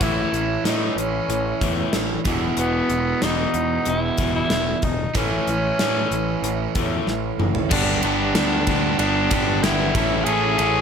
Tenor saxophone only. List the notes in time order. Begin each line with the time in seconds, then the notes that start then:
0.02 E4
0.66 D#4
0.98 C#4
2.60 B3
3.23 D#4
3.89 E4
4.35 E4
4.84 D#4
5.16 C#4
7.72 D4
8.04 D4
8.99 D4
9.63 E4
10.24 G#4